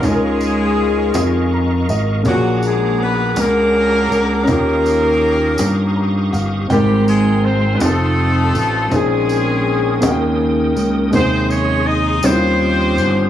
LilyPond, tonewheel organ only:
\new Staff \with { instrumentName = "Tonewheel organ" } { \time 6/8 \key ees \mixolydian \tempo 4. = 54 << { des'''2. | d'''2. | ees'''2. | c'''4. ees'''4.~ |
ees'''2.~ | ees'''2. | } \\ { <bes' ees'' f''>2. | <aes' fis'' bes''>2. | <g' f'' des'''>2. | <aes g'' bes''>4. <a' f''>4. |
<bes' aes''>4. <bes' g''>4. | <aes' ees'' c'''>4. <g' f''>4. | } >> }